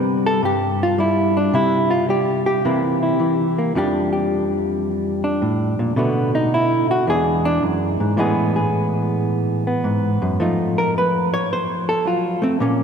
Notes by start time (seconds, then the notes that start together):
Already playing: C3 G3 B3 D4 B4
0.26 A4
0.43 G2 G4
0.83 F4
0.98 G3 E4
1.37 D4
1.53 C3 E4
1.91 F4
2.09 G3 G4
2.46 G4
2.65 C3 E3 A#3 E4
3.03 E4
3.20 E3
3.58 A#3
3.75 F2 F3 G3 D4 G4
4.13 G4
5.24 D4
5.42 A2
5.79 A#2
5.96 B2 D3 A3 B3 F#4
6.35 D#4
6.54 E4
6.91 F#4
7.07 E2 E3 G#3 D4 G#4
7.45 D4
7.63 F#2
8.00 G#2
8.17 A2 E3 G#3 B3 G#4
8.56 G#4
9.67 B3
9.84 G#2
10.22 F#2
10.40 F3 A3 D#4 F4
10.78 A#4
10.98 B4
11.34 C#5
11.53 C5
11.89 A4
12.05 F#3 F4
12.42 A3 C4
12.60 A#2 A#3 C#4